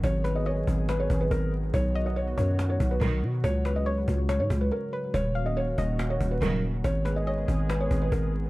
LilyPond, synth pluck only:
\new Staff \with { instrumentName = "Synth pluck" } { \time 4/4 \key ees \minor \tempo 4 = 141 r8 ces''8 ees''4 ces''2 | r8 dis''4 des''8 r2 | r8 ces''8 des''4 des''4. ces''8 | r8 f''4 ees''8 r2 |
r8 ces''8 ees''4 ces''2 | }